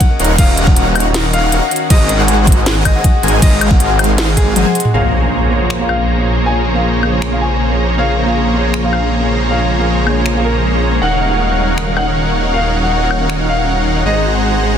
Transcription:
Already playing: ambient pad D#3 C#4 F#4, harp G#4 C#5 D#5 F#5, grand piano F#5
0.00 kick, closed hi-hat
0.10 harp A#4
0.19 detuned saw bass D#1, supersaw synth D#4 A#4 C#5 F5 F#5, harp C#5, closed hi-hat
0.24 closed hi-hat
0.29 harp D#5
0.38 detuned saw bass D#1, harp A#4, supersaw synth A#4 C#5 F#5, grand piano F5, kick, closed hi-hat, crash
0.48 harp A#4
0.57 harp D#5, closed hi-hat
0.67 harp F#5, kick
0.76 harp A#5, closed hi-hat
0.86 harp A#4
0.95 harp C#5, closed hi-hat, high woodblock
1.00 closed hi-hat
1.05 harp D#5
1.14 harp A#4, snare, closed hi-hat, crash
1.24 harp A#4
1.33 harp D#5, grand piano F5, closed hi-hat
1.43 harp F#5
1.52 detuned saw bass D#1, supersaw synth D#4 A#4 C#5 F5 F#5, harp A#5, closed hi-hat
1.62 harp A#4
1.71 harp C#5, closed hi-hat
1.76 closed hi-hat
1.81 harp D#5
1.90 detuned saw bass G#1, ambient pad C3 G#3, supersaw synth G#3 G#4 A#4 C5 F#5, harp G#4, grand piano D#5, kick, closed hi-hat, crash
2.00 harp G#4
2.09 harp D#5, closed hi-hat
2.19 harp F#5
2.28 harp G#5, closed hi-hat
2.38 harp G#4
2.47 harp C5, kick, closed hi-hat
2.52 closed hi-hat
2.57 harp D#5
2.66 harp G#4, snare, closed hi-hat, crash
2.76 harp G#4
2.85 detuned saw bass G#1, supersaw synth G#3 G#4 G#5, grand piano D#5, harp D#5, kick, closed hi-hat, high woodblock
2.95 harp F#5
3.04 harp G#5, kick, closed hi-hat
3.14 harp G#4
3.23 detuned saw bass G#1, supersaw synth G#3 G#4 A#4 C5 G#5, harp C5, closed hi-hat
3.28 closed hi-hat
3.33 harp D#5
3.42 detuned saw bass G#1, supersaw synth G#3 G#4 A#4, harp G#4, grand piano D#5, kick, closed hi-hat, crash
3.52 harp G#4
3.61 harp D#5, closed hi-hat, high woodblock
3.71 harp F#5, kick
3.80 harp G#5, closed hi-hat
3.90 harp G#4
3.99 harp C5, closed hi-hat, high woodblock
4.04 closed hi-hat
4.09 harp D#5
4.18 harp G#4, snare, closed hi-hat, crash
4.28 harp G#4
4.37 grand piano G#4, kick, closed hi-hat
4.47 harp D#5
4.56 detuned saw bass G#1, supersaw synth G#3 G#4 A#4 C5 G#5, harp F#5, closed hi-hat, high tom
4.66 harp C5, high tom
4.75 harp G#4, closed hi-hat
4.80 closed hi-hat
4.85 harp G#4, mid tom
4.93 detuned saw bass A#1, ambient pad C#3 A#3 G#4, felt piano A#3 F4 G#4 C#5, supersaw synth A#3 G#4 C5 C#5 A#5, grand piano F5, impact
5.22 felt piano A#3 F4 G#4 F5
5.50 felt piano A#3 F4 G#4 C#5
5.70 finger snap
5.79 felt piano A#3 F4 G#4 F5
5.89 grand piano F5, high woodblock
6.17 felt piano A#3 F4 G#4 C#5
6.45 felt piano A#3 F4 G#4 C#5, grand piano G#5
6.74 felt piano A#3 F4 G#4 F5
7.02 felt piano A#3 F4 G#4 C#5, high woodblock
7.22 finger snap
7.31 felt piano A#3 F4 G#4 F5
7.41 grand piano G#5
7.69 felt piano A#3 F4 G#4 C#5
7.97 ambient pad G#3, felt piano A#3 F4 G#4 C#5, supersaw synth A#3 G#4 C5 C#5 A#5, grand piano F5
8.26 felt piano A#3 F4 G#4 F5
8.54 felt piano A#3 F4 G#4 C#5
8.74 finger snap
8.83 felt piano A#3 F4 G#4 F5
8.93 grand piano F5, high woodblock
9.21 felt piano A#3 F4 G#4 C#5
9.49 felt piano A#3 F4 G#4 C#5, grand piano F5
9.78 felt piano A#3 F4 G#4 F5
10.06 felt piano A#3 F4 G#4 C#5, high woodblock
10.26 finger snap
10.35 felt piano A#3 F4 G#4 F5
10.44 grand piano A#4
10.73 felt piano A#3 F4 G#4 C#5
11.02 detuned saw bass D#1, ambient pad D#3 C#4 F#4, supersaw synth D#4 A#4 C#5 F5 F#5, harp A#4, grand piano F#5
11.21 harp D#5
11.30 harp F#5
11.40 harp A#5
11.50 harp A#4
11.59 harp C#5
11.68 harp D#5
11.78 harp A#4, finger snap
11.87 harp A#4
11.97 harp D#5, grand piano F#5, high woodblock
12.07 harp F#5
12.16 harp A#5
12.25 harp A#4
12.35 harp C#5
12.44 harp D#5
12.54 harp A#4, grand piano F5
12.63 harp A#4
12.73 harp D#5
12.83 harp F#5
12.92 harp A#5
13.01 harp A#4
13.11 harp C#5, high woodblock
13.20 harp D#5
13.30 finger snap
13.39 harp A#4
13.49 harp D#5, grand piano F5
13.58 harp F#5
13.68 harp A#5
13.77 harp A#4
13.87 harp C#5
13.96 harp D#5
14.05 detuned saw bass G#1, ambient pad C3 G#3 F#4, supersaw synth G#3 G#4 C5 F#5 A#5, harp G#4, grand piano D#5
14.15 harp G#4
14.24 harp D#5
14.34 harp F#5
14.43 harp G#5
14.53 harp G#4
14.62 harp C5
14.72 harp D#5

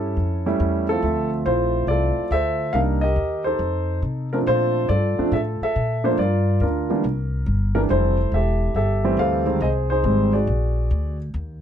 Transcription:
Already playing: upright bass G2, grand piano C#4 E4 G4 A4
0.17 upright bass F2
0.46 grand piano G3 A3 C#4 E4
0.60 upright bass E2
0.89 grand piano F3 A3 C4 E4 F4 A4
1.03 upright bass D2, grand piano F3 A3 C4 E5
1.46 upright bass A#1, grand piano E4 F4 C5
1.87 upright bass C2, grand piano F4 A4 D5
2.18 muted upright bass stroke
2.31 upright bass D2, grand piano A4 C5 E5
2.73 upright bass C2, grand piano G3 A#3 D4 D#4 A#4 F5
3.01 grand piano G4 A#4 D#5
3.16 upright bass D#2
3.44 grand piano D#4 A4 C5
3.59 upright bass F2
4.02 upright bass C3
4.33 grand piano F3 A3 C4 D4 A#4
4.46 upright bass A#2, grand piano F4 A4 C5
4.89 upright bass G2, grand piano F4 A4 D5
5.18 grand piano F3 A3 C4 D4, muted upright bass stroke
5.32 upright bass A2, grand piano A4 E5
5.61 grand piano A4 E5, muted upright bass stroke
5.76 upright bass A#2
6.04 grand piano F3 A3 A#3 D4 C5
6.18 upright bass G2, grand piano F4 A#4 D5
6.60 upright bass D2, grand piano D4 F4 A#4
6.90 grand piano E3 G3 A#3 D4
7.04 upright bass C2
7.46 upright bass G1
7.75 grand piano E3 G3 A3 D4 A#4
7.90 upright bass F1, grand piano E3 G3 A3 C4 E4 A4 C5
8.32 upright bass E1, grand piano G4 A4 E5
8.75 upright bass G1, grand piano G4 A4 E5
9.04 grand piano E3 G3 A3 C4
9.17 upright bass D2, grand piano A4 C5 F5
9.46 grand piano D#3 G3 G#3 C4
9.60 upright bass C2, grand piano G#4 C5 D#5
9.90 grand piano D#4 G#4 C5
10.04 upright bass G#1, grand piano D#3 G3 G#3 C4
10.33 grand piano F#4 G#4 D5
10.47 upright bass A#1
10.91 upright bass D2
11.34 upright bass D#2

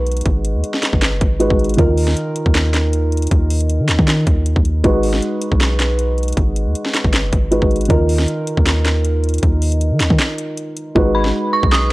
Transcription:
Already playing: 808-style bass B1, felt piano G#3 D#4 F#4 B4
0.07 closed hi-hat
0.12 closed hi-hat
0.17 closed hi-hat
0.21 closed hi-hat
0.26 808-style bass G#1, kick, closed hi-hat
0.45 closed hi-hat
0.55 808-style bass D#2
0.64 closed hi-hat
0.74 snare
0.83 snare, clap, closed hi-hat
0.93 808-style bass G#1, kick
1.02 snare, clap, closed hi-hat
1.12 808-style bass F#1
1.21 808-style bass G#1, kick, closed hi-hat
1.40 felt piano G#3 D#4 F#4 B4, closed hi-hat
1.50 808-style bass G#1, kick
1.59 closed hi-hat
1.64 closed hi-hat
1.69 closed hi-hat
1.74 felt piano D#3 D#4, closed hi-hat
1.78 808-style bass D#2, felt piano F4 A#4, kick, closed hi-hat
1.98 open hi-hat
2.08 snare
2.17 closed hi-hat
2.36 closed hi-hat
2.46 808-style bass D#2, kick
2.55 snare, clap, closed hi-hat
2.74 snare, clap, closed hi-hat
2.93 closed hi-hat
3.12 closed hi-hat
3.17 closed hi-hat
3.22 closed hi-hat
3.27 closed hi-hat
3.31 808-style bass D#2, kick, closed hi-hat
3.50 closed hi-hat, open hi-hat
3.61 closed hi-hat
3.70 closed hi-hat
3.80 808-style bass D#3
3.89 808-style bass D#2, snare, clap, closed hi-hat
3.99 808-style bass D#3, kick
4.08 snare, clap, closed hi-hat
4.27 808-style bass D#2, kick, closed hi-hat
4.46 closed hi-hat
4.56 808-style bass D#2, kick
4.65 closed hi-hat
4.84 808-style bass G#1, felt piano G#3 D#4 F#4 B4, kick, closed hi-hat
5.03 open hi-hat
5.14 snare
5.22 closed hi-hat
5.42 closed hi-hat
5.52 808-style bass B1, kick
5.61 snare, clap, closed hi-hat
5.80 snare, clap, closed hi-hat
5.99 closed hi-hat
6.18 closed hi-hat
6.23 closed hi-hat
6.28 closed hi-hat
6.33 closed hi-hat
6.37 808-style bass G#1, kick, closed hi-hat
6.56 closed hi-hat
6.66 808-style bass D#2
6.75 closed hi-hat
6.86 snare
6.94 snare, clap, closed hi-hat
7.04 808-style bass G#1, kick
7.13 snare, clap, closed hi-hat
7.24 808-style bass F#1
7.33 808-style bass G#1, kick, closed hi-hat
7.51 felt piano G#3 D#4 F#4 B4, closed hi-hat
7.62 808-style bass G#1, kick
7.71 closed hi-hat
7.76 closed hi-hat
7.81 closed hi-hat
7.85 felt piano D#3 D#4, closed hi-hat
7.90 808-style bass D#2, felt piano F4 A#4, kick, closed hi-hat
8.09 open hi-hat
8.19 snare
8.28 closed hi-hat
8.47 closed hi-hat
8.57 808-style bass D#2, kick
8.66 snare, clap, closed hi-hat
8.85 snare, clap, closed hi-hat
9.05 closed hi-hat
9.24 closed hi-hat
9.29 closed hi-hat
9.34 closed hi-hat
9.38 closed hi-hat
9.43 808-style bass D#2, kick, closed hi-hat
9.62 closed hi-hat, open hi-hat
9.72 closed hi-hat
9.81 closed hi-hat
9.91 808-style bass D#3
10.00 808-style bass D#2, snare, clap, closed hi-hat
10.10 808-style bass D#3, kick
10.19 snare, clap, closed hi-hat
10.38 closed hi-hat
10.57 closed hi-hat
10.77 closed hi-hat
10.95 808-style bass G#1, felt piano G#3 D#4 F#4 B4, kick
11.15 synth bell B5
11.25 snare
11.53 synth bell C#6
11.63 808-style bass B1, kick
11.72 synth bell D#6, snare, clap

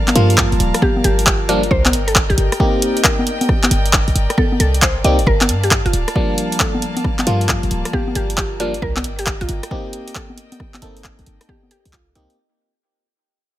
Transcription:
Already playing: fm electric piano F3 G3 A#3 D4, violin section A#4 D5 F5 A5
0.08 clap, closed hi-hat, high conga
0.15 808-style bass G2, fm electric piano F3 G3 A#3 F4, closed hi-hat
0.30 closed hi-hat
0.38 kick, cross-stick, clap
0.52 808-style bass F1, closed hi-hat
0.60 808-style bass D1, closed hi-hat
0.74 cross-stick, closed hi-hat
0.82 synth pluck G4, kick, high conga
0.97 high conga
1.04 808-style bass G1, synth pluck G4, closed hi-hat
1.19 closed hi-hat
1.26 synth pluck G4, kick, clap, closed hi-hat
1.49 fm electric piano F3 G3 A#3 D4, synth pluck F4, closed hi-hat
1.63 closed hi-hat
1.71 808-style bass C2, synth pluck C5, violin section D5 D#5 G5, kick
1.86 clap, closed hi-hat, high conga
1.93 808-style bass G1, closed hi-hat
2.08 synth pluck A4, closed hi-hat
2.15 kick, cross-stick, clap
2.30 808-style bass A#1, synth pluck G4, closed hi-hat
2.38 808-style bass G1, closed hi-hat
2.52 cross-stick, closed hi-hat
2.60 fm electric piano A#3 C4 D#4 G4, kick
2.82 closed hi-hat
2.97 closed hi-hat
3.04 synth pluck A#4, kick, clap, closed hi-hat
3.19 high conga
3.27 closed hi-hat
3.41 closed hi-hat, high conga
3.49 kick, cross-stick
3.64 clap, closed hi-hat, high conga
3.71 808-style bass G1, closed hi-hat
3.86 closed hi-hat
3.93 kick, cross-stick, clap
4.08 808-style bass A#1, closed hi-hat
4.15 808-style bass G1, closed hi-hat
4.30 cross-stick, closed hi-hat
4.38 synth pluck A4, kick, high conga
4.52 high conga
4.60 808-style bass C2, synth pluck A4, closed hi-hat
4.74 closed hi-hat
4.82 synth pluck C5, kick, clap, closed hi-hat
4.96 808-style bass G1
5.04 808-style bass C2, fm electric piano A#3 C4 D#4 G4, synth pluck D5, closed hi-hat
5.19 808-style bass G1, closed hi-hat
5.27 808-style bass G1, violin section A#3 F5 A5, synth pluck A#4, kick
5.41 clap, closed hi-hat, high conga
5.49 808-style bass G2, closed hi-hat
5.63 synth pluck G4, closed hi-hat
5.71 kick, cross-stick, clap
5.86 808-style bass F1, synth pluck F4, closed hi-hat
5.93 808-style bass D1, closed hi-hat
6.08 cross-stick, closed hi-hat
6.16 fm electric piano F3 G3 A#3 D4, kick
6.38 closed hi-hat
6.52 closed hi-hat
6.60 synth pluck A4, kick, clap, closed hi-hat
6.74 high conga
6.82 closed hi-hat
6.97 closed hi-hat, high conga
7.04 kick, cross-stick
7.19 clap, closed hi-hat, high conga
7.27 808-style bass G2, fm electric piano F3 G3 A#3 F4, closed hi-hat
7.41 closed hi-hat
7.49 kick, cross-stick, clap
7.63 808-style bass F1, closed hi-hat
7.71 808-style bass D1, closed hi-hat
7.85 cross-stick, closed hi-hat
7.93 synth pluck G4, kick, high conga
8.08 high conga
8.15 808-style bass G1, synth pluck G4, closed hi-hat
8.30 closed hi-hat
8.38 synth pluck G4, kick, clap, closed hi-hat
8.60 fm electric piano F3 G3 A#3 D4, synth pluck F4, closed hi-hat
8.74 closed hi-hat
8.82 808-style bass C2, synth pluck A#4, violin section D#5 G5, kick
8.97 clap, closed hi-hat, high conga
9.04 808-style bass G1, closed hi-hat
9.19 synth pluck G4, closed hi-hat
9.27 kick, cross-stick, clap
9.41 808-style bass A#1, synth pluck F4, closed hi-hat
9.49 808-style bass G1, closed hi-hat
9.63 cross-stick, closed hi-hat
9.71 fm electric piano A#3 C4 D#4 G4, kick
9.93 closed hi-hat
10.08 closed hi-hat
10.15 synth pluck A4, kick, clap, closed hi-hat
10.30 high conga
10.38 closed hi-hat
10.52 closed hi-hat, high conga
10.60 kick, cross-stick
10.74 clap, closed hi-hat, high conga
10.82 808-style bass G1, fm electric piano A#3 C4 D#4 A4, closed hi-hat
10.97 closed hi-hat
11.04 kick, cross-stick, clap
11.19 808-style bass A#1, closed hi-hat
11.26 808-style bass G1, closed hi-hat
11.41 cross-stick, closed hi-hat
11.49 synth pluck G4, kick, high conga
11.63 high conga
11.71 synth pluck G4, closed hi-hat
11.85 808-style bass C2, closed hi-hat
11.93 synth pluck F4, kick, clap, closed hi-hat
12.15 808-style bass C2, fm electric piano A#3 C4 D#4 G4, synth pluck D#4, closed hi-hat
12.30 closed hi-hat

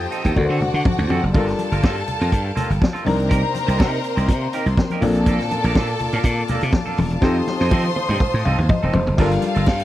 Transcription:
Already playing: grand piano F3 C4 D#4 G4 A4, string section G4 C5 F5 G5 A5 D#6
0.01 muted clean electric guitar stroke
0.11 clean electric guitar C4 D#4 A4, closed hi-hat
0.24 slap bass D#2, clean electric guitar C4 D#4 A4, kick, closed hi-hat
0.35 slap bass D2, grand piano D3 D4 F#4 A4 A#4, string section F#4 C5 F#5 A5 D6, muted clean electric guitar stroke, kick, high tom
0.45 grand piano C5
0.49 slap bass D3, clean electric guitar C4 F#4 A4
0.61 muted clean electric guitar stroke, mid tom, low conga
0.74 slap bass D3, muted clean electric guitar stroke
0.85 kick, mid tom, high conga
0.98 slap bass D2, muted clean electric guitar stroke, mid tom, high conga
1.10 slap bass F2, clean electric guitar C4 F#4 A4, floor tom, high conga
1.23 slap bass F#1, muted clean electric guitar stroke, floor tom
1.33 slap bass G1, grand piano G3 D4 F4 A4 A#4, clean electric guitar A#3 F4 A4, string section A4 F5 G5 A5, kick, crash, muted conga
1.46 muted clean electric guitar stroke, snare, closed hi-hat
1.59 muted clean electric guitar stroke, closed hi-hat, muted conga
1.72 slap bass G1, clean electric guitar A#3 F4 A#4, closed hi-hat
1.83 slap bass G2, clean electric guitar A#3 F4 A4, kick, snare, high conga
1.96 muted clean electric guitar stroke
2.06 muted clean electric guitar stroke, closed hi-hat, low conga
2.20 slap bass F2, clean electric guitar A#3 F4 A#4, closed hi-hat
2.32 slap bass G2, kick, closed hi-hat
2.45 muted clean electric guitar stroke
2.55 clean electric guitar A#3 F4 A4, closed hi-hat, muted conga, low conga
2.69 slap bass G1, muted clean electric guitar stroke, closed hi-hat
2.80 muted clean electric guitar stroke, kick, snare, high conga
2.93 clean electric guitar A#3 F4 A4, closed hi-hat, high conga
3.05 slap bass C2, grand piano C3 C4 D4 D#4 A#4, string section A#3 A#4 C5 A#5 C6, muted clean electric guitar stroke, open hi-hat, high conga
3.18 muted clean electric guitar stroke, closed hi-hat
3.29 clean electric guitar D#4 G4 A#4, kick, closed hi-hat, muted conga
3.42 muted clean electric guitar stroke
3.54 muted clean electric guitar stroke, closed hi-hat, muted conga
3.67 slap bass C2, clean electric guitar D#4 G4 C5, closed hi-hat
3.78 slap bass C3, clean electric guitar D#4 G4 A#4, kick, snare, high conga
3.91 muted clean electric guitar stroke
4.04 muted clean electric guitar stroke, closed hi-hat
4.16 slap bass C2, clean electric guitar D#4 G4 C5, closed hi-hat
4.29 slap bass C3, muted clean electric guitar stroke, kick, closed hi-hat
4.42 muted clean electric guitar stroke
4.53 clean electric guitar D#4 G4 A#4, closed hi-hat
4.66 slap bass C2, muted clean electric guitar stroke, closed hi-hat
4.77 muted clean electric guitar stroke, kick, snare, high conga
4.90 clean electric guitar D#4 G4 A#4, closed hi-hat, high conga
5.01 slap bass A#1, grand piano A#2 A#3 C4 D4 A4, string section A4 F5 A5 D6, muted clean electric guitar stroke, open hi-hat, high conga
5.15 muted clean electric guitar stroke, closed hi-hat
5.26 clean electric guitar A#3 D4 A4, kick, closed hi-hat, muted conga
5.40 muted clean electric guitar stroke, snare, closed hi-hat
5.51 muted clean electric guitar stroke, closed hi-hat, muted conga
5.64 slap bass A#1, clean electric guitar A#3 D4 A#4, closed hi-hat
5.75 slap bass A#2, clean electric guitar A#3 D4 A4, kick, snare, high conga
5.88 muted clean electric guitar stroke, closed hi-hat
5.99 muted clean electric guitar stroke, closed hi-hat, low conga
6.12 slap bass A2, clean electric guitar A#3 D4 A#4, closed hi-hat
6.24 slap bass A#2, kick, closed hi-hat
6.39 muted clean electric guitar stroke
6.48 clean electric guitar A#3 D4 A4, closed hi-hat, muted conga, low conga
6.61 slap bass C3, muted clean electric guitar stroke, closed hi-hat
6.73 muted clean electric guitar stroke, kick, snare, high conga
6.86 clean electric guitar A#3 D4 A4, high conga
6.98 slap bass E1, muted clean electric guitar stroke, open hi-hat, high conga
7.10 muted clean electric guitar stroke, closed hi-hat
7.21 slap bass F2, grand piano F3 C4 D#4 G4 A4, clean electric guitar C4 D#4, string section C5 C6 D#6, kick, snare, muted conga
7.25 clean electric guitar A4
7.36 muted clean electric guitar stroke
7.47 muted clean electric guitar stroke, snare, muted conga
7.60 slap bass F2, clean electric guitar C4 D#4 C5, snare
7.71 slap bass F3, clean electric guitar C4 D#4 A4, kick, high tom, high conga
7.85 muted clean electric guitar stroke
7.96 muted clean electric guitar stroke, high tom
8.09 slap bass G2, clean electric guitar C4 D#4 C5, mid tom
8.20 kick, mid tom
8.34 slap bass A2, muted clean electric guitar stroke
8.45 slap bass C2, clean electric guitar C4 D#4 A4, grand piano F5, mid tom
8.58 slap bass D#2, muted clean electric guitar stroke, mid tom
8.69 grand piano D#5, muted clean electric guitar stroke, kick, mid tom, high conga
8.82 slap bass E1, clean electric guitar C4 D#4 A4, high conga
8.93 slap bass F1, grand piano C5, muted clean electric guitar stroke, floor tom, high conga
9.07 slap bass F#1, muted clean electric guitar stroke, floor tom
9.17 slap bass G1, grand piano G3 D4 F4 A4 A#4, clean electric guitar A#3 F4 A4, string section F4 F5 G5 A5, kick, crash, muted conga
9.32 muted clean electric guitar stroke, closed hi-hat
9.42 muted clean electric guitar stroke, closed hi-hat, muted conga
9.55 slap bass G1, clean electric guitar A#3 F4 A4, closed hi-hat
9.66 slap bass G2, muted clean electric guitar stroke, kick, snare, high conga
9.80 muted clean electric guitar stroke, closed hi-hat

